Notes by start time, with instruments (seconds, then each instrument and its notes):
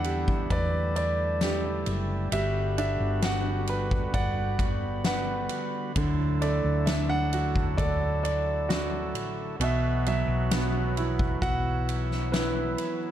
Already playing: fingered electric bass E2, tonewheel organ D3 G3 B3 E4, grand piano E3 B3 D4 F#5
0.04 grand piano G4, ride
0.28 kick
0.50 fingered electric bass E2, tonewheel organ A3, grand piano B4 D5, kick, ride
0.96 grand piano D5, ride
1.41 grand piano G4, snare, ride
1.86 fingered electric bass F#1, ride
2.32 fingered electric bass G1, grand piano G3 E5, tonewheel organ B3 F#4, ride
2.78 grand piano D4 E5, ride
3.00 fingered electric bass G1
3.22 grand piano F#4 F#5, snare, ride
3.67 grand piano B4, ride
3.91 kick
4.14 fingered electric bass G1, grand piano D5 F#5, kick, ride
4.59 kick, ride
5.05 grand piano B4 F#5, snare, ride
5.49 ride
5.95 fingered electric bass D2, grand piano D3, tonewheel organ F#3 A3 E4, kick, ride
6.42 grand piano A3 D5, ride
6.64 fingered electric bass D2
6.86 grand piano D4 E5, snare, ride
7.09 grand piano F#5
7.33 grand piano F#4, ride
7.56 kick
7.78 fingered electric bass D2, grand piano A4 D5, kick, ride
8.23 grand piano D5, ride
8.69 grand piano F#4, snare, ride
9.14 fingered electric bass A1, ride
9.60 fingered electric bass B1, grand piano B2 E5, tonewheel organ E3 F#3 B3 F#4, ride
10.06 grand piano F#3 E5, ride
10.28 fingered electric bass B1
10.51 grand piano B3, snare, ride
10.97 grand piano E4, ride
11.19 kick
11.42 fingered electric bass B1, tonewheel organ E4, grand piano F#4 F#5, kick, ride
11.89 ride
12.11 snare
12.32 grand piano E4 B4, snare, ride
12.78 ride